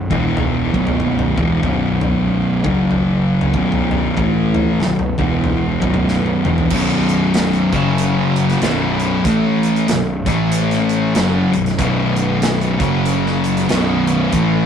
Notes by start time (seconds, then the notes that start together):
0.10 E1 E2 B2 E3 E4 B4 F#5, kick, floor tom
0.37 floor tom
0.73 B0 B1 F#2 B2 B3 F#4, kick
0.87 floor tom
1.00 mid tom
1.19 floor tom
1.37 E1 E2 B2 E3, kick, floor tom
1.62 B0 B1 F#2 B2, kick, floor tom
2.01 floor tom
2.63 F#1 F#2 C#3 F#3 C#4, kick, floor tom
2.91 floor tom
3.41 floor tom
3.53 B0 B1 F#2 B2 B3 B4, kick, mid tom
3.72 floor tom
3.91 floor tom
4.17 A1 A2 E3 A3 E4, kick, floor tom
4.55 floor tom
4.80 B0 B1 F#2 B3 F#4, snare, mid tom
4.99 floor tom
5.18 E1 E2 B2 E3 E4 F#5, kick, floor tom
5.44 floor tom
5.82 B0 B1 F#2 B2 B3 F#4, kick, floor tom
5.94 floor tom
6.08 snare
6.26 high tom
6.45 E1 E2 B2 E3, mid tom
6.58 floor tom
6.70 B0 B1 F#2 B2, kick, crash
7.09 closed hi-hat
7.34 snare, closed hi-hat
7.53 closed hi-hat
7.73 F#1 F#2 C#3 F#3, kick, closed hi-hat
7.98 closed hi-hat
8.36 closed hi-hat
8.50 snare, closed hi-hat
8.61 B0 B1 F#2 B2, snare, closed hi-hat
9.00 closed hi-hat
9.25 A1 A2 E3 A3, kick, closed hi-hat
9.63 closed hi-hat
9.76 closed hi-hat
9.88 B0 B1 F#2, snare, closed hi-hat
10.26 A1 A2 E3 A3, kick, closed hi-hat
10.52 closed hi-hat
10.71 snare, closed hi-hat
10.89 closed hi-hat
11.14 F#1 F#2 C#3 F#3, snare, closed hi-hat
11.53 B0 B1 F#2, closed hi-hat
11.66 snare, closed hi-hat
11.78 B0 B1 F#2 B2 B3 F#4 B4, kick, closed hi-hat
12.17 closed hi-hat
12.42 snare, closed hi-hat
12.61 closed hi-hat
12.79 F#1 F#2 C#3 F#3 C#4, kick, closed hi-hat
13.06 closed hi-hat
13.26 snare
13.44 closed hi-hat
13.57 snare, closed hi-hat
13.68 B0 B1 F#2 B2 B3 B4, snare, closed hi-hat
14.07 closed hi-hat
14.31 A1 A2 E3 A3 E4, kick, closed hi-hat